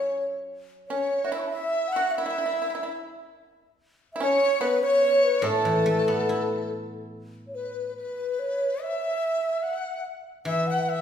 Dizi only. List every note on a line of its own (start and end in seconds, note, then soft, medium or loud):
0.00 0.25 C#5 medium
0.89 1.34 C#5 medium
1.33 1.35 E5 medium
1.33 1.38 E6 soft
1.39 1.46 B5 soft
1.39 1.41 C#6 soft
1.47 1.49 A5 soft
1.51 1.94 E5 medium
1.93 2.09 F#5 medium
2.09 2.17 F#5 medium
2.15 2.98 E5 medium
4.21 4.63 C#5 medium
4.61 4.81 B4 medium
4.82 5.45 C#5 loud
5.44 6.71 A4 medium
7.55 7.94 B4 medium
7.97 8.83 B4 medium
8.82 9.64 E5 medium
9.63 10.05 F#5 medium
10.46 10.66 E5 medium
10.70 10.91 F#5 medium
10.89 11.01 E5 medium